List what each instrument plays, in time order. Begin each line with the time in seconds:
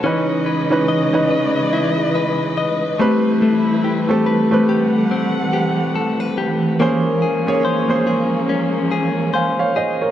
Already playing: clean electric guitar D4 A4 C#5, string section B4
0.04 string section C#3 E3 G#3 D#5, grand piano E3 C#4 D#4 B4, clean electric guitar C#4
0.46 clean electric guitar B4
0.70 grand piano E3 C#4 D#4 B4
0.88 clean electric guitar D#5
1.13 grand piano E3 C#4 D#4 B4
1.31 clean electric guitar B4
1.73 clean electric guitar E4
2.15 clean electric guitar B4
2.58 clean electric guitar D#5
2.99 string section E3 G3 A3 E4, grand piano A3 C4 G4 B4, clean electric guitar A3
3.42 clean electric guitar A3
3.84 clean electric guitar G4
4.09 grand piano A3 C4 G4 A4
4.26 clean electric guitar B4
4.51 grand piano A3 C4 G4 B4
4.69 clean electric guitar G4, string section F#5
5.11 clean electric guitar C4
5.53 clean electric guitar G4
5.95 clean electric guitar A4
6.20 clean electric guitar B4
6.38 clean electric guitar G4
6.80 string section F3 G#3 A#3 C#4, grand piano A#3 C#4 G#4 C5, clean electric guitar A#3
7.22 clean electric guitar G#4
7.46 grand piano A#3 C#4 G#4 C#5
7.65 clean electric guitar C5
7.88 grand piano A#3 C#4 G#4 C5
8.07 clean electric guitar G#4
8.49 clean electric guitar C#4
8.91 clean electric guitar G#4
9.34 clean electric guitar C5, grand piano F5 G#5
9.59 grand piano C#5 F5
9.76 clean electric guitar G#4, grand piano C5 D#5
10.01 grand piano A#4 C#5